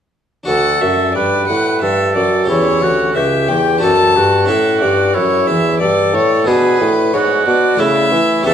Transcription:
0.43 bassoon D2, harpsichord D4 F#4 A4, oboe A4, violin F#5
0.48 harpsichord D2
0.81 bassoon F#2, harpsichord F#2, violin E5
1.15 bassoon G2, harpsichord G2, oboe B4, violin D5
1.48 bassoon A2, harpsichord A2, violin F#5
1.82 harpsichord G2, bassoon G2, oboe A4, violin E5
2.15 harpsichord F#2, bassoon F#2, violin D5
2.44 harpsichord C#4 G4
2.48 harpsichord E2, bassoon E2, oboe E4, violin C#5
2.81 harpsichord D2, bassoon D2, oboe F#4
3.15 harpsichord C#2, bassoon C#2, oboe G4, violin E5
3.49 harpsichord E2, bassoon E2, violin G5
3.78 harpsichord D4 F#4 A4, violin A5
3.82 harpsichord F#2, bassoon F#2, oboe A4
4.16 harpsichord G2, bassoon G2, oboe F#4
4.45 harpsichord C#4 E4 A4, violin E5
4.49 harpsichord A2, bassoon A2
4.81 bassoon G2, harpsichord G2, violin D5
5.14 bassoon F#2, harpsichord F#2, oboe E4, violin C#5
5.47 bassoon E2, harpsichord E2, violin E5
5.80 bassoon G2, harpsichord G2, oboe A4, violin D5
6.14 bassoon A2, harpsichord A2, violin C#5
6.44 bassoon B2, harpsichord B3 D4 G#4, oboe G#4, violin B4
6.49 harpsichord B2
6.80 bassoon A2, harpsichord A2
7.14 bassoon G#2, harpsichord G#2, oboe F#4, violin C#5
7.47 bassoon B2, harpsichord B2, violin D5
7.75 harpsichord A3 E4 A4
7.79 bassoon C#3, harpsichord C#3, oboe E4, violin E5
8.12 bassoon E3, harpsichord E3
8.42 harpsichord C#4 G4 B4
8.46 bassoon E2, harpsichord E2, oboe A4, violin E5

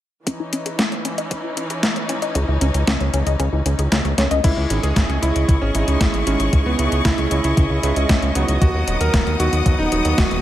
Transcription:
0.27 string section E3 C#4 D#4, synth arpeggio sound C#4, kick, closed hi-hat
0.40 synth arpeggio sound E4
0.53 synth arpeggio sound C#4, closed hi-hat
0.66 synth arpeggio sound G#4, closed hi-hat
0.79 synth arpeggio sound C#4, kick, snare, closed hi-hat
0.92 synth arpeggio sound C#5, closed hi-hat
1.05 synth arpeggio sound C#4, closed hi-hat
1.18 synth arpeggio sound D#5, closed hi-hat
1.31 synth arpeggio sound C#4, kick, closed hi-hat
1.44 synth arpeggio sound E4
1.57 synth arpeggio sound C#4, closed hi-hat
1.70 synth arpeggio sound G#4, closed hi-hat
1.83 synth arpeggio sound C#4, kick, snare, closed hi-hat
1.96 synth arpeggio sound C#5, closed hi-hat
2.09 synth arpeggio sound C#4, closed hi-hat
2.22 synth arpeggio sound D#5, closed hi-hat
2.35 analog synth bass C#2, synth arpeggio sound C#4, kick, closed hi-hat
2.48 analog synth bass C#2, synth arpeggio sound E4
2.61 analog synth bass C#2, synth arpeggio sound C#4, closed hi-hat
2.74 analog synth bass C#2, synth arpeggio sound G#4, closed hi-hat
2.87 analog synth bass C#2, synth arpeggio sound C#4, kick, snare, closed hi-hat
3.00 analog synth bass C#2, synth arpeggio sound C#5, closed hi-hat
3.14 analog synth bass C#2, synth arpeggio sound C#4, closed hi-hat
3.27 analog synth bass C#2, synth arpeggio sound D#5, closed hi-hat
3.40 analog synth bass C#2, synth arpeggio sound C#4, kick, closed hi-hat
3.53 analog synth bass C#2, synth arpeggio sound E4
3.66 analog synth bass C#2, synth arpeggio sound C#4, closed hi-hat
3.79 analog synth bass C#2, synth arpeggio sound G#4, closed hi-hat
3.92 analog synth bass C#2, synth arpeggio sound C#4, kick, snare, closed hi-hat
4.05 analog synth bass C#2, synth arpeggio sound C#5, closed hi-hat
4.18 analog synth bass C#2, synth arpeggio sound C#4, snare, closed hi-hat
4.31 analog synth bass C#2, synth arpeggio sound D#5, closed hi-hat
4.44 analog synth bass C#2, electric grand piano E4, string section G#4 D#5 C#6, kick, closed hi-hat, crash
4.57 analog synth bass C#2
4.70 analog synth bass G#1, electric grand piano G#3 C#4 D#4 E4, closed hi-hat
4.83 analog synth bass C#2, electric grand piano G#4, closed hi-hat
4.96 analog synth bass G#1, kick, snare, closed hi-hat
5.09 analog synth bass C#2, closed hi-hat
5.22 analog synth bass C#2, electric grand piano G#3 C#4 E4 D#5, closed hi-hat
5.36 analog synth bass C#2, closed hi-hat
5.48 analog synth bass C#2, kick, closed hi-hat
5.62 analog synth bass G#1, electric grand piano C#4
5.75 analog synth bass G#1, electric grand piano G#3 C#4 D#4 E4, closed hi-hat
5.88 analog synth bass C#2, electric grand piano G#3 C#4 D#4 E4, closed hi-hat
6.01 analog synth bass G#1, electric grand piano E4, kick, snare, closed hi-hat
6.14 analog synth bass G#1, closed hi-hat
6.27 analog synth bass G#1, electric grand piano G#3 C#4 D#4 E4, closed hi-hat
6.40 analog synth bass G#1, closed hi-hat
6.53 analog synth bass C#2, kick, closed hi-hat
6.66 analog synth bass C#2, electric grand piano B3
6.79 analog synth bass C#2, electric grand piano G#3 C#4 D#4 E4, closed hi-hat
6.92 analog synth bass C#2, closed hi-hat
7.05 analog synth bass C#2, electric grand piano E4, kick, snare, closed hi-hat
7.18 analog synth bass C#2, closed hi-hat
7.31 analog synth bass C#2, electric grand piano G#3 C#4 E4 D#5, closed hi-hat
7.44 analog synth bass C#2, electric grand piano E4, closed hi-hat
7.57 analog synth bass C#2, kick, closed hi-hat
7.70 analog synth bass C#2
7.83 analog synth bass C#2, electric grand piano G#3 C#4 D#4 E4, closed hi-hat
7.96 analog synth bass C#2, electric grand piano G#3 C#4 E4 D#5, closed hi-hat
8.09 analog synth bass C#2, kick, snare, closed hi-hat
8.22 analog synth bass C#2, closed hi-hat
8.35 analog synth bass C#2, electric grand piano F#3 B3 D#4 F#4, closed hi-hat
8.48 analog synth bass C#2, closed hi-hat
8.61 analog synth bass D#2, string section B3 F#5 D#6, electric grand piano F#4, kick, closed hi-hat
8.75 analog synth bass D#2
8.88 analog synth bass D#1, electric grand piano F#3 B3 D#4 F#4, closed hi-hat
9.01 analog synth bass D#2, electric grand piano A#4, closed hi-hat
9.14 analog synth bass D#1, kick, snare, closed hi-hat
9.27 analog synth bass D#2, closed hi-hat
9.40 analog synth bass D#2, electric grand piano F#3 B3 D#4 F#4, closed hi-hat
9.53 analog synth bass D#2, closed hi-hat
9.66 analog synth bass D#2, kick, closed hi-hat
9.79 analog synth bass D#1, electric grand piano D#4
9.92 analog synth bass D#1, electric grand piano F#3 B3 D#4 F#4, closed hi-hat
10.05 analog synth bass D#2, electric grand piano F#3 B3 D#4 F#4, closed hi-hat
10.18 analog synth bass D#1, electric grand piano F#4, kick, snare, closed hi-hat
10.31 analog synth bass D#1, closed hi-hat

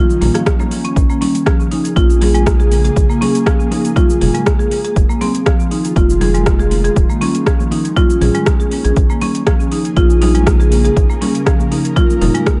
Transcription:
Already playing: ambient pad D#3 C#4
0.09 muted conga, cabasa
0.21 analog synth bass A#1, marimba A#3, mid tom, open hi-hat, low conga, cabasa
0.35 marimba F3, cross-stick, closed hi-hat, high conga, cabasa
0.46 kick, cross-stick, closed hi-hat, cabasa
0.59 marimba A#3, muted conga, low conga, cabasa
0.71 open hi-hat, high conga, cabasa
0.85 marimba C#4, closed hi-hat, cabasa
0.96 analog synth bass A#1, ambient pad C#3 A#3 G#4, kick, closed hi-hat, muted conga, cabasa
1.10 marimba A#3, cabasa
1.21 marimba C#4, open hi-hat, low conga, cabasa
1.35 closed hi-hat, muted conga, cabasa
1.46 marimba F3, kick, cross-stick, closed hi-hat, cabasa
1.60 cabasa
1.71 marimba D#4, open hi-hat, muted conga, cabasa
1.85 closed hi-hat, cabasa
1.96 analog synth bass A#1, marimba F4, kick, closed hi-hat, high conga, cabasa
2.10 muted conga, cabasa
2.21 marimba G#4, open hi-hat, low conga, cabasa
2.35 marimba G#3, closed hi-hat, cabasa
2.46 kick, cross-stick, closed hi-hat, high conga, cabasa
2.60 marimba G#4, muted conga, cabasa
2.72 open hi-hat, high conga, cabasa
2.85 marimba G#4, closed hi-hat, cabasa
2.96 analog synth bass A#1, kick, closed hi-hat, muted conga, cabasa
3.10 marimba A#3, cabasa
3.21 marimba C#4, open hi-hat, low conga, cabasa
3.35 closed hi-hat, muted conga, cabasa
3.46 marimba F3, kick, cross-stick, closed hi-hat, cabasa
3.60 high conga, cabasa
3.71 marimba D#4, open hi-hat, muted conga, high conga, cabasa
3.85 closed hi-hat, cabasa
3.96 marimba F4, kick, closed hi-hat, high conga, low conga, cabasa
4.10 muted conga, cabasa
4.21 analog synth bass F1, marimba G#4, mid tom, open hi-hat, low conga, cabasa
4.34 marimba G#3, closed hi-hat, cabasa
4.46 kick, cross-stick, closed hi-hat, cabasa
4.59 marimba G#4, muted conga, cabasa
4.71 open hi-hat, high conga, cabasa
4.84 marimba G#4, closed hi-hat, cabasa
4.96 analog synth bass F1, ambient pad D#3 G#3 F4, kick, closed hi-hat, muted conga, cabasa
5.09 marimba A#3, cabasa
5.21 marimba C4, open hi-hat, low conga, cabasa
5.35 closed hi-hat, muted conga, cabasa
5.46 marimba F3, kick, cross-stick, closed hi-hat, cabasa
5.60 cabasa
5.71 marimba D#4, open hi-hat, muted conga, cabasa
5.85 closed hi-hat, cabasa
5.96 analog synth bass F1, marimba F4, kick, closed hi-hat, high conga, cabasa
6.10 muted conga, cabasa
6.21 marimba G#4, open hi-hat, low conga, cabasa
6.34 marimba G#3, closed hi-hat, cabasa
6.46 kick, cross-stick, closed hi-hat, high conga, cabasa
6.59 marimba G#4, muted conga, cabasa
6.71 open hi-hat, high conga, cabasa
6.84 marimba G#4, closed hi-hat, cabasa
6.96 analog synth bass D#1, ambient pad C#4, kick, closed hi-hat, muted conga, cabasa
7.10 marimba A#3, cabasa
7.21 marimba C#4, open hi-hat, low conga, cabasa
7.35 closed hi-hat, muted conga, cabasa
7.46 marimba F3, kick, cross-stick, closed hi-hat, cabasa
7.60 high conga, cabasa
7.71 marimba D#4, open hi-hat, muted conga, high conga, cabasa
7.85 closed hi-hat, cabasa
7.96 marimba F4, kick, closed hi-hat, high conga, low conga, cabasa
8.10 muted conga, cabasa
8.21 analog synth bass A#1, marimba G#4, mid tom, open hi-hat, low conga, cabasa
8.35 marimba G#3, closed hi-hat, cabasa
8.46 kick, cross-stick, closed hi-hat, cabasa
8.60 marimba G#4, muted conga, cabasa
8.71 open hi-hat, high conga, cabasa
8.85 analog synth bass A#1, marimba G#4, closed hi-hat, cabasa
8.96 analog synth bass A#1, ambient pad C#3 A#3 G#4, kick, closed hi-hat, muted conga, cabasa
9.10 marimba A#3, cabasa
9.21 marimba C#4, open hi-hat, low conga, cabasa
9.35 closed hi-hat, muted conga, cabasa
9.47 marimba F3, kick, cross-stick, closed hi-hat, cabasa
9.60 cabasa
9.72 marimba D#4, open hi-hat, muted conga, cabasa
9.85 closed hi-hat, cabasa
9.97 analog synth bass A#1, marimba F4, kick, closed hi-hat, high conga, cabasa
10.10 muted conga, cabasa
10.22 marimba D#4, open hi-hat, low conga, cabasa
10.35 marimba G#3, closed hi-hat, cabasa
10.46 kick, cross-stick, closed hi-hat, high conga, cabasa
10.60 marimba G#4, muted conga, cabasa
10.71 open hi-hat, high conga, cabasa
10.85 marimba G#4, closed hi-hat, cabasa
10.97 analog synth bass A#1, ambient pad A#4, kick, closed hi-hat, muted conga, cabasa
11.10 marimba A#3, cabasa
11.21 marimba C#4, open hi-hat, low conga, cabasa
11.35 closed hi-hat, muted conga, cabasa
11.46 marimba F3, kick, cross-stick, closed hi-hat, cabasa
11.60 high conga, cabasa
11.71 marimba D#4, open hi-hat, muted conga, high conga, cabasa
11.85 closed hi-hat, cabasa
11.96 marimba F4, kick, closed hi-hat, high conga, low conga, cabasa
12.10 muted conga, cabasa
12.21 analog synth bass F1, marimba D#4, mid tom, open hi-hat, low conga, cabasa
12.35 marimba G#3, closed hi-hat, cabasa
12.46 kick, cross-stick, closed hi-hat, cabasa

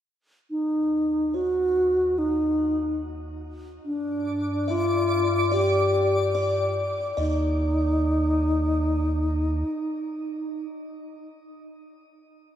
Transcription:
0.50 sub bass D#2, alto flute D#4
1.34 alto flute F#4, kalimba C#5
2.18 alto flute D#4
3.81 sub bass G2, synth texture D5 D6
3.85 alto flute D4
4.68 alto flute F4, kalimba E5
5.52 alto flute G4, kalimba D5
6.35 kalimba D5
7.17 sub bass D#2, alto flute D#4, kalimba D#5

